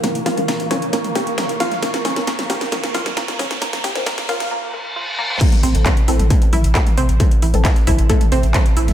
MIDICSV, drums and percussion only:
0, 0, Header, 1, 2, 480
1, 0, Start_track
1, 0, Tempo, 447761
1, 39, Time_signature, 4, 2, 24, 8
1, 9575, End_track
2, 0, Start_track
2, 0, Title_t, "Drums"
2, 38, Note_on_c, 9, 42, 92
2, 39, Note_off_c, 9, 42, 0
2, 39, Note_on_c, 9, 38, 82
2, 39, Note_on_c, 9, 42, 86
2, 39, Note_on_c, 9, 45, 67
2, 146, Note_off_c, 9, 38, 0
2, 146, Note_off_c, 9, 42, 0
2, 146, Note_off_c, 9, 45, 0
2, 162, Note_on_c, 9, 42, 52
2, 269, Note_off_c, 9, 42, 0
2, 277, Note_on_c, 9, 42, 73
2, 279, Note_on_c, 9, 38, 83
2, 279, Note_on_c, 9, 46, 104
2, 385, Note_off_c, 9, 42, 0
2, 386, Note_off_c, 9, 38, 0
2, 386, Note_off_c, 9, 46, 0
2, 402, Note_on_c, 9, 42, 51
2, 402, Note_on_c, 9, 45, 70
2, 509, Note_off_c, 9, 42, 0
2, 509, Note_off_c, 9, 45, 0
2, 518, Note_on_c, 9, 38, 119
2, 518, Note_on_c, 9, 46, 81
2, 519, Note_off_c, 9, 38, 0
2, 519, Note_on_c, 9, 38, 88
2, 519, Note_on_c, 9, 42, 88
2, 625, Note_off_c, 9, 46, 0
2, 626, Note_off_c, 9, 38, 0
2, 626, Note_off_c, 9, 42, 0
2, 642, Note_on_c, 9, 42, 50
2, 749, Note_off_c, 9, 42, 0
2, 758, Note_on_c, 9, 42, 69
2, 759, Note_on_c, 9, 38, 86
2, 759, Note_on_c, 9, 45, 71
2, 759, Note_on_c, 9, 46, 90
2, 865, Note_off_c, 9, 42, 0
2, 866, Note_off_c, 9, 38, 0
2, 866, Note_off_c, 9, 45, 0
2, 866, Note_off_c, 9, 46, 0
2, 881, Note_on_c, 9, 42, 49
2, 988, Note_off_c, 9, 42, 0
2, 997, Note_on_c, 9, 38, 89
2, 997, Note_on_c, 9, 42, 91
2, 1105, Note_off_c, 9, 38, 0
2, 1105, Note_off_c, 9, 42, 0
2, 1120, Note_on_c, 9, 42, 45
2, 1120, Note_on_c, 9, 45, 73
2, 1227, Note_off_c, 9, 42, 0
2, 1227, Note_off_c, 9, 45, 0
2, 1237, Note_on_c, 9, 38, 90
2, 1237, Note_on_c, 9, 46, 105
2, 1238, Note_on_c, 9, 42, 69
2, 1345, Note_off_c, 9, 38, 0
2, 1345, Note_off_c, 9, 42, 0
2, 1345, Note_off_c, 9, 46, 0
2, 1360, Note_on_c, 9, 42, 50
2, 1468, Note_off_c, 9, 42, 0
2, 1477, Note_on_c, 9, 38, 116
2, 1477, Note_on_c, 9, 42, 88
2, 1478, Note_off_c, 9, 38, 0
2, 1478, Note_off_c, 9, 42, 0
2, 1478, Note_on_c, 9, 38, 91
2, 1478, Note_on_c, 9, 42, 89
2, 1478, Note_on_c, 9, 45, 71
2, 1585, Note_off_c, 9, 38, 0
2, 1585, Note_off_c, 9, 42, 0
2, 1585, Note_off_c, 9, 45, 0
2, 1600, Note_on_c, 9, 42, 43
2, 1707, Note_off_c, 9, 42, 0
2, 1717, Note_on_c, 9, 38, 89
2, 1717, Note_on_c, 9, 46, 87
2, 1718, Note_on_c, 9, 42, 69
2, 1824, Note_off_c, 9, 38, 0
2, 1824, Note_off_c, 9, 46, 0
2, 1825, Note_off_c, 9, 42, 0
2, 1839, Note_on_c, 9, 42, 50
2, 1839, Note_on_c, 9, 45, 71
2, 1841, Note_on_c, 9, 38, 42
2, 1947, Note_off_c, 9, 42, 0
2, 1947, Note_off_c, 9, 45, 0
2, 1948, Note_off_c, 9, 38, 0
2, 1956, Note_on_c, 9, 38, 90
2, 1956, Note_on_c, 9, 42, 88
2, 1957, Note_off_c, 9, 42, 0
2, 1957, Note_on_c, 9, 42, 91
2, 2063, Note_off_c, 9, 38, 0
2, 2065, Note_off_c, 9, 42, 0
2, 2078, Note_on_c, 9, 38, 85
2, 2078, Note_on_c, 9, 42, 54
2, 2186, Note_off_c, 9, 38, 0
2, 2186, Note_off_c, 9, 42, 0
2, 2196, Note_on_c, 9, 38, 93
2, 2196, Note_on_c, 9, 45, 68
2, 2196, Note_on_c, 9, 46, 102
2, 2198, Note_on_c, 9, 42, 70
2, 2304, Note_off_c, 9, 38, 0
2, 2304, Note_off_c, 9, 45, 0
2, 2304, Note_off_c, 9, 46, 0
2, 2305, Note_off_c, 9, 42, 0
2, 2319, Note_on_c, 9, 38, 81
2, 2319, Note_on_c, 9, 42, 52
2, 2427, Note_off_c, 9, 38, 0
2, 2427, Note_off_c, 9, 42, 0
2, 2437, Note_on_c, 9, 38, 97
2, 2437, Note_on_c, 9, 42, 94
2, 2439, Note_off_c, 9, 38, 0
2, 2439, Note_off_c, 9, 42, 0
2, 2439, Note_on_c, 9, 38, 118
2, 2439, Note_on_c, 9, 42, 88
2, 2546, Note_off_c, 9, 38, 0
2, 2546, Note_off_c, 9, 42, 0
2, 2560, Note_on_c, 9, 38, 83
2, 2560, Note_on_c, 9, 42, 53
2, 2560, Note_on_c, 9, 45, 68
2, 2667, Note_off_c, 9, 38, 0
2, 2667, Note_off_c, 9, 42, 0
2, 2667, Note_off_c, 9, 45, 0
2, 2677, Note_on_c, 9, 38, 98
2, 2677, Note_on_c, 9, 42, 73
2, 2677, Note_on_c, 9, 46, 91
2, 2784, Note_off_c, 9, 38, 0
2, 2784, Note_off_c, 9, 46, 0
2, 2785, Note_off_c, 9, 42, 0
2, 2799, Note_on_c, 9, 38, 83
2, 2799, Note_on_c, 9, 42, 50
2, 2907, Note_off_c, 9, 38, 0
2, 2907, Note_off_c, 9, 42, 0
2, 2917, Note_on_c, 9, 38, 99
2, 2917, Note_on_c, 9, 42, 85
2, 2917, Note_on_c, 9, 45, 70
2, 3024, Note_off_c, 9, 38, 0
2, 3024, Note_off_c, 9, 42, 0
2, 3024, Note_off_c, 9, 45, 0
2, 3039, Note_on_c, 9, 38, 88
2, 3039, Note_on_c, 9, 42, 52
2, 3146, Note_off_c, 9, 38, 0
2, 3146, Note_off_c, 9, 42, 0
2, 3157, Note_on_c, 9, 38, 99
2, 3157, Note_on_c, 9, 42, 73
2, 3157, Note_on_c, 9, 46, 103
2, 3264, Note_off_c, 9, 38, 0
2, 3264, Note_off_c, 9, 46, 0
2, 3265, Note_off_c, 9, 42, 0
2, 3280, Note_on_c, 9, 38, 88
2, 3280, Note_on_c, 9, 42, 53
2, 3280, Note_on_c, 9, 45, 69
2, 3387, Note_off_c, 9, 38, 0
2, 3387, Note_off_c, 9, 42, 0
2, 3387, Note_off_c, 9, 45, 0
2, 3397, Note_on_c, 9, 38, 117
2, 3397, Note_on_c, 9, 42, 88
2, 3505, Note_off_c, 9, 38, 0
2, 3505, Note_off_c, 9, 42, 0
2, 3520, Note_on_c, 9, 38, 86
2, 3520, Note_on_c, 9, 42, 52
2, 3627, Note_off_c, 9, 38, 0
2, 3627, Note_off_c, 9, 42, 0
2, 3637, Note_on_c, 9, 42, 71
2, 3638, Note_on_c, 9, 38, 100
2, 3638, Note_on_c, 9, 45, 66
2, 3638, Note_on_c, 9, 46, 87
2, 3744, Note_off_c, 9, 42, 0
2, 3745, Note_off_c, 9, 38, 0
2, 3745, Note_off_c, 9, 45, 0
2, 3745, Note_off_c, 9, 46, 0
2, 3760, Note_on_c, 9, 38, 91
2, 3760, Note_on_c, 9, 42, 50
2, 3867, Note_off_c, 9, 38, 0
2, 3867, Note_off_c, 9, 42, 0
2, 3877, Note_on_c, 9, 38, 101
2, 3877, Note_on_c, 9, 42, 94
2, 3984, Note_off_c, 9, 38, 0
2, 3984, Note_off_c, 9, 42, 0
2, 4000, Note_on_c, 9, 38, 97
2, 4000, Note_on_c, 9, 42, 57
2, 4000, Note_on_c, 9, 45, 67
2, 4107, Note_off_c, 9, 38, 0
2, 4107, Note_off_c, 9, 42, 0
2, 4107, Note_off_c, 9, 45, 0
2, 4117, Note_on_c, 9, 38, 106
2, 4117, Note_on_c, 9, 46, 101
2, 4224, Note_off_c, 9, 38, 0
2, 4224, Note_off_c, 9, 46, 0
2, 4239, Note_on_c, 9, 38, 91
2, 4239, Note_on_c, 9, 42, 55
2, 4347, Note_off_c, 9, 38, 0
2, 4347, Note_off_c, 9, 42, 0
2, 4356, Note_on_c, 9, 38, 115
2, 4356, Note_on_c, 9, 46, 83
2, 4357, Note_off_c, 9, 38, 0
2, 4357, Note_on_c, 9, 38, 107
2, 4357, Note_on_c, 9, 42, 98
2, 4357, Note_on_c, 9, 45, 67
2, 4463, Note_off_c, 9, 46, 0
2, 4464, Note_off_c, 9, 38, 0
2, 4464, Note_off_c, 9, 42, 0
2, 4464, Note_off_c, 9, 45, 0
2, 4480, Note_on_c, 9, 38, 92
2, 4480, Note_on_c, 9, 42, 54
2, 4587, Note_off_c, 9, 38, 0
2, 4587, Note_off_c, 9, 42, 0
2, 4598, Note_on_c, 9, 38, 109
2, 4598, Note_on_c, 9, 42, 73
2, 4598, Note_on_c, 9, 46, 91
2, 4705, Note_off_c, 9, 38, 0
2, 4705, Note_off_c, 9, 42, 0
2, 4705, Note_off_c, 9, 46, 0
2, 4720, Note_on_c, 9, 38, 94
2, 4720, Note_on_c, 9, 42, 55
2, 4720, Note_on_c, 9, 45, 65
2, 4827, Note_off_c, 9, 38, 0
2, 4827, Note_off_c, 9, 42, 0
2, 4827, Note_off_c, 9, 45, 0
2, 5798, Note_on_c, 9, 36, 124
2, 5798, Note_on_c, 9, 42, 90
2, 5798, Note_on_c, 9, 49, 103
2, 5905, Note_off_c, 9, 42, 0
2, 5905, Note_off_c, 9, 49, 0
2, 5906, Note_off_c, 9, 36, 0
2, 5921, Note_on_c, 9, 42, 58
2, 5921, Note_on_c, 9, 45, 66
2, 6028, Note_off_c, 9, 42, 0
2, 6028, Note_off_c, 9, 45, 0
2, 6038, Note_on_c, 9, 42, 70
2, 6038, Note_on_c, 9, 46, 110
2, 6145, Note_off_c, 9, 42, 0
2, 6146, Note_off_c, 9, 46, 0
2, 6161, Note_on_c, 9, 42, 55
2, 6269, Note_off_c, 9, 42, 0
2, 6278, Note_on_c, 9, 38, 120
2, 6278, Note_on_c, 9, 42, 90
2, 6279, Note_off_c, 9, 42, 0
2, 6279, Note_on_c, 9, 36, 120
2, 6279, Note_on_c, 9, 39, 127
2, 6279, Note_on_c, 9, 42, 98
2, 6279, Note_on_c, 9, 45, 64
2, 6385, Note_off_c, 9, 38, 0
2, 6386, Note_off_c, 9, 36, 0
2, 6386, Note_off_c, 9, 39, 0
2, 6386, Note_off_c, 9, 42, 0
2, 6386, Note_off_c, 9, 45, 0
2, 6400, Note_on_c, 9, 42, 56
2, 6507, Note_off_c, 9, 42, 0
2, 6518, Note_on_c, 9, 46, 107
2, 6519, Note_on_c, 9, 42, 70
2, 6625, Note_off_c, 9, 46, 0
2, 6626, Note_off_c, 9, 42, 0
2, 6641, Note_on_c, 9, 42, 54
2, 6641, Note_on_c, 9, 45, 64
2, 6748, Note_off_c, 9, 42, 0
2, 6748, Note_off_c, 9, 45, 0
2, 6758, Note_on_c, 9, 36, 115
2, 6758, Note_on_c, 9, 42, 100
2, 6759, Note_off_c, 9, 42, 0
2, 6759, Note_on_c, 9, 42, 88
2, 6866, Note_off_c, 9, 36, 0
2, 6866, Note_off_c, 9, 42, 0
2, 6880, Note_on_c, 9, 42, 57
2, 6987, Note_off_c, 9, 42, 0
2, 6997, Note_on_c, 9, 45, 66
2, 6997, Note_on_c, 9, 46, 109
2, 6999, Note_on_c, 9, 42, 70
2, 7104, Note_off_c, 9, 45, 0
2, 7104, Note_off_c, 9, 46, 0
2, 7106, Note_off_c, 9, 42, 0
2, 7120, Note_on_c, 9, 42, 58
2, 7227, Note_off_c, 9, 42, 0
2, 7237, Note_on_c, 9, 39, 123
2, 7237, Note_on_c, 9, 42, 95
2, 7238, Note_on_c, 9, 36, 119
2, 7239, Note_off_c, 9, 42, 0
2, 7239, Note_on_c, 9, 38, 116
2, 7239, Note_on_c, 9, 42, 89
2, 7344, Note_off_c, 9, 39, 0
2, 7346, Note_off_c, 9, 36, 0
2, 7346, Note_off_c, 9, 38, 0
2, 7346, Note_off_c, 9, 42, 0
2, 7360, Note_on_c, 9, 42, 57
2, 7360, Note_on_c, 9, 45, 64
2, 7468, Note_off_c, 9, 42, 0
2, 7468, Note_off_c, 9, 45, 0
2, 7477, Note_on_c, 9, 46, 103
2, 7479, Note_on_c, 9, 42, 68
2, 7584, Note_off_c, 9, 46, 0
2, 7586, Note_off_c, 9, 42, 0
2, 7600, Note_on_c, 9, 42, 55
2, 7707, Note_off_c, 9, 42, 0
2, 7718, Note_on_c, 9, 42, 95
2, 7718, Note_on_c, 9, 45, 62
2, 7719, Note_off_c, 9, 42, 0
2, 7719, Note_on_c, 9, 36, 123
2, 7719, Note_on_c, 9, 42, 93
2, 7825, Note_off_c, 9, 45, 0
2, 7826, Note_off_c, 9, 36, 0
2, 7826, Note_off_c, 9, 42, 0
2, 7841, Note_on_c, 9, 42, 57
2, 7948, Note_off_c, 9, 42, 0
2, 7958, Note_on_c, 9, 46, 112
2, 7959, Note_on_c, 9, 42, 68
2, 8065, Note_off_c, 9, 46, 0
2, 8067, Note_off_c, 9, 42, 0
2, 8080, Note_on_c, 9, 42, 55
2, 8080, Note_on_c, 9, 45, 62
2, 8188, Note_off_c, 9, 42, 0
2, 8188, Note_off_c, 9, 45, 0
2, 8198, Note_on_c, 9, 39, 122
2, 8198, Note_on_c, 9, 42, 101
2, 8199, Note_on_c, 9, 36, 123
2, 8199, Note_on_c, 9, 38, 120
2, 8199, Note_on_c, 9, 46, 82
2, 8306, Note_off_c, 9, 36, 0
2, 8306, Note_off_c, 9, 38, 0
2, 8306, Note_off_c, 9, 39, 0
2, 8306, Note_off_c, 9, 42, 0
2, 8306, Note_off_c, 9, 46, 0
2, 8321, Note_on_c, 9, 42, 55
2, 8428, Note_off_c, 9, 42, 0
2, 8438, Note_on_c, 9, 45, 65
2, 8438, Note_on_c, 9, 46, 114
2, 8439, Note_on_c, 9, 36, 64
2, 8439, Note_on_c, 9, 42, 72
2, 8545, Note_off_c, 9, 45, 0
2, 8545, Note_off_c, 9, 46, 0
2, 8546, Note_off_c, 9, 36, 0
2, 8546, Note_off_c, 9, 42, 0
2, 8560, Note_on_c, 9, 42, 55
2, 8667, Note_off_c, 9, 42, 0
2, 8678, Note_on_c, 9, 42, 98
2, 8679, Note_on_c, 9, 36, 122
2, 8680, Note_off_c, 9, 42, 0
2, 8680, Note_on_c, 9, 42, 88
2, 8786, Note_off_c, 9, 36, 0
2, 8787, Note_off_c, 9, 42, 0
2, 8800, Note_on_c, 9, 42, 56
2, 8800, Note_on_c, 9, 45, 64
2, 8802, Note_off_c, 9, 42, 0
2, 8802, Note_on_c, 9, 42, 44
2, 8907, Note_off_c, 9, 45, 0
2, 8910, Note_off_c, 9, 42, 0
2, 8917, Note_on_c, 9, 46, 112
2, 8920, Note_on_c, 9, 42, 72
2, 9024, Note_off_c, 9, 46, 0
2, 9027, Note_off_c, 9, 42, 0
2, 9040, Note_on_c, 9, 42, 54
2, 9147, Note_off_c, 9, 42, 0
2, 9158, Note_on_c, 9, 39, 126
2, 9158, Note_on_c, 9, 42, 95
2, 9158, Note_on_c, 9, 45, 65
2, 9159, Note_on_c, 9, 36, 126
2, 9160, Note_off_c, 9, 42, 0
2, 9160, Note_on_c, 9, 38, 117
2, 9160, Note_on_c, 9, 42, 88
2, 9265, Note_off_c, 9, 39, 0
2, 9265, Note_off_c, 9, 45, 0
2, 9266, Note_off_c, 9, 36, 0
2, 9267, Note_off_c, 9, 38, 0
2, 9267, Note_off_c, 9, 42, 0
2, 9280, Note_on_c, 9, 42, 58
2, 9282, Note_off_c, 9, 42, 0
2, 9282, Note_on_c, 9, 42, 45
2, 9389, Note_off_c, 9, 42, 0
2, 9397, Note_on_c, 9, 46, 108
2, 9400, Note_on_c, 9, 42, 71
2, 9505, Note_off_c, 9, 46, 0
2, 9507, Note_off_c, 9, 42, 0
2, 9521, Note_on_c, 9, 42, 57
2, 9521, Note_on_c, 9, 45, 62
2, 9522, Note_on_c, 9, 38, 43
2, 9575, Note_off_c, 9, 38, 0
2, 9575, Note_off_c, 9, 42, 0
2, 9575, Note_off_c, 9, 45, 0
2, 9575, End_track
0, 0, End_of_file